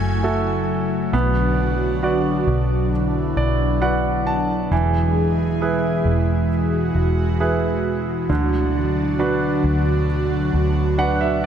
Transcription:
0.00 1.10 F#1 loud
0.00 1.10 C#3 medium
0.00 1.09 F#3 medium
0.00 4.68 F#3 medium
0.00 1.10 A3 medium
0.00 0.23 E4 medium
0.00 1.09 E4 medium
0.00 0.24 F#4 soft
0.00 0.24 A4 medium
0.00 1.11 G#5 medium
0.23 1.10 E4 medium
0.23 1.11 F#4 soft
0.23 1.11 A4 medium
1.13 2.44 B1 loud
1.13 11.46 B2 medium
1.13 4.68 D3 medium
1.13 4.68 B3 medium
1.13 4.68 D4 medium
1.13 2.90 F#4 medium
2.03 2.90 F#4 medium
2.03 2.90 B4 soft
2.03 2.90 D5 medium
2.47 3.33 B1 medium
2.92 4.70 E4 medium
3.37 4.67 B1 medium
3.37 3.79 D5 medium
3.81 4.69 F#4 soft
3.81 4.69 B4 soft
3.81 4.69 D5 medium
3.81 4.24 F#5 medium
4.27 4.68 A5 medium
4.71 6.02 E1 medium
4.71 8.26 E3 medium
4.71 8.26 G#3 medium
4.71 8.26 E4 medium
4.71 6.49 G#4 medium
5.61 6.48 E4 soft
5.61 6.48 G#4 soft
5.61 6.48 B4 medium
6.05 6.91 E1 medium
6.50 8.28 F#4 medium
6.95 8.26 E1 medium
7.40 8.27 E4 soft
7.40 8.27 G#4 soft
7.40 8.27 B4 medium
8.29 9.60 D2 medium
8.29 11.46 D3 medium
8.29 11.46 F#3 medium
8.29 11.46 D4 medium
8.29 11.46 F#4 medium
9.19 10.06 D4 medium
9.19 10.06 F#4 soft
9.19 10.06 B4 medium
9.64 10.50 D2 loud
10.54 11.46 D2 loud
10.98 11.46 D4 soft
10.98 11.46 F#4 soft
10.98 11.46 B4 medium
10.98 11.19 F#5 medium
11.21 11.42 E5 medium

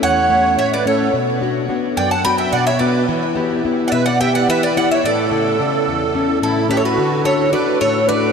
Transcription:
0.00 0.56 E2 medium
0.00 0.19 A3 soft
0.00 0.18 C#4 soft
0.00 0.19 E4 soft
0.00 0.54 C#5 medium
0.00 0.55 F#5 loud
0.30 0.75 A3 soft
0.30 0.75 C#4 soft
0.30 0.75 E4 medium
0.58 1.12 A2 medium
0.58 0.71 C#5 medium
0.58 0.71 E5 medium
0.73 0.86 B4 medium
0.73 0.87 D5 medium
0.85 1.07 A3 soft
0.85 1.08 C#4 soft
0.85 1.08 E4 medium
0.85 1.12 A4 medium
0.85 1.12 C#5 medium
1.13 1.67 B2 medium
1.41 1.67 B3 medium
1.41 1.68 D4 soft
1.41 1.68 F#4 medium
1.68 2.13 B3 soft
1.68 2.14 D4 soft
1.68 2.14 F#4 soft
1.97 2.51 F#2 medium
1.97 2.10 D5 medium
1.97 2.11 G5 medium
2.10 2.24 F#5 medium
2.10 2.24 A5 medium
2.25 2.69 B3 medium
2.25 2.70 D4 soft
2.25 2.70 F#4 medium
2.25 2.38 G5 medium
2.25 2.38 B5 loud
2.38 2.52 E5 medium
2.38 2.51 G5 medium
2.52 3.06 B2 medium
2.52 2.65 D5 medium
2.52 2.66 F#5 medium
2.66 2.79 C#5 medium
2.66 2.80 E5 medium
2.79 3.02 B3 soft
2.79 3.03 D4 soft
2.79 3.03 F#4 medium
2.79 3.06 B4 medium
2.79 3.06 D5 medium
3.08 3.62 E3 medium
3.35 3.64 B3 medium
3.35 3.64 E4 soft
3.35 3.64 G4 medium
3.65 4.09 B3 soft
3.65 4.09 E4 soft
3.65 4.09 G4 medium
3.88 3.92 D5 medium
3.88 3.91 F#5 medium
3.92 4.46 B2 medium
3.92 4.05 B4 medium
3.92 4.05 E5 medium
4.06 4.19 D5 medium
4.06 4.20 F#5 medium
4.20 4.64 B3 medium
4.20 4.65 E4 soft
4.20 4.65 G4 medium
4.20 4.33 E5 medium
4.20 4.34 G5 loud
4.35 4.47 D5 medium
4.35 4.48 F#5 medium
4.49 5.02 E3 medium
4.49 4.61 B4 medium
4.49 4.63 E5 loud
4.63 4.75 B4 medium
4.63 4.75 D5 medium
4.76 4.98 B3 soft
4.76 4.98 E4 soft
4.76 4.99 G4 medium
4.76 4.89 D5 medium
4.76 4.90 F#5 medium
4.91 5.03 C#5 medium
4.91 5.04 E5 medium
5.04 5.57 A2 medium
5.04 6.39 A4 medium
5.04 6.39 D5 medium
5.31 5.58 C#3 medium
5.31 5.58 E4 soft
5.31 5.58 A4 medium
5.59 6.03 C#3 medium
5.59 6.03 E4 soft
5.59 6.03 A4 medium
5.88 6.41 E2 medium
6.15 6.59 C#4 medium
6.15 6.59 E4 soft
6.15 6.59 A4 soft
6.42 6.96 A2 medium
6.42 6.68 E4 medium
6.42 6.68 A4 medium
6.69 6.91 C#4 soft
6.69 6.91 E4 soft
6.69 6.77 G4 medium
6.69 6.91 A4 medium
6.69 6.76 B4 medium
6.75 6.82 A4 medium
6.75 6.84 C#5 medium
6.84 7.22 F#4 medium
6.84 7.23 B4 medium
6.97 7.51 D3 medium
7.24 7.51 D4 medium
7.24 7.51 F#4 soft
7.24 7.50 A4 medium
7.24 7.52 A4 medium
7.24 7.52 C#5 medium
7.52 7.97 D4 soft
7.52 7.97 F#4 soft
7.52 7.97 A4 medium
7.52 7.78 B4 medium
7.52 7.78 D5 medium
7.80 8.32 A2 medium
7.80 8.06 A4 medium
7.80 8.08 C#5 medium
8.07 8.32 D4 soft
8.07 8.32 F#4 soft
8.07 8.32 A4 medium
8.07 8.32 B4 medium
8.07 8.32 D5 medium

